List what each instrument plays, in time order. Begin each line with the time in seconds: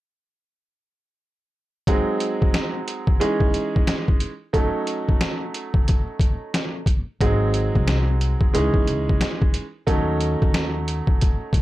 1.87 upright piano F#3 G#3 C4 D#4 G#4, kick, closed hi-hat
2.20 closed hi-hat
2.42 kick
2.54 snare, closed hi-hat
2.88 closed hi-hat
3.07 kick
3.20 upright piano E3 G#3 C#4 D#4 G#4, closed hi-hat
3.40 kick
3.54 closed hi-hat
3.76 kick
3.87 snare, closed hi-hat
4.08 kick
4.20 closed hi-hat
4.53 upright piano F#3 A3 C#4 D#4 A4, kick, closed hi-hat
4.87 closed hi-hat
5.09 kick
5.21 snare, closed hi-hat
5.54 closed hi-hat
5.74 kick
5.88 kick, closed hi-hat
6.20 kick, closed hi-hat
6.54 snare, closed hi-hat
6.86 kick, closed hi-hat
7.21 upright bass G#1, upright piano F#3 G#3 C4 D#4 G#4, kick, closed hi-hat
7.54 closed hi-hat
7.75 upright bass C2, kick
7.88 snare, closed hi-hat
8.21 closed hi-hat
8.41 kick
8.53 upright bass C#2, upright piano E3 G#3 C#4 D#4 G#4, closed hi-hat
8.74 muted upright bass stroke, kick
8.87 upright bass C#2, closed hi-hat
9.09 kick
9.21 snare, closed hi-hat
9.42 kick
9.54 closed hi-hat
9.87 upright bass D#2, upright piano F#3 A3 C#4 D#4 A4, kick, closed hi-hat
10.21 closed hi-hat
10.42 upright bass D#2, kick
10.54 snare, closed hi-hat
10.88 closed hi-hat
11.07 kick
11.21 kick, closed hi-hat
11.53 upright bass C#2, kick, closed hi-hat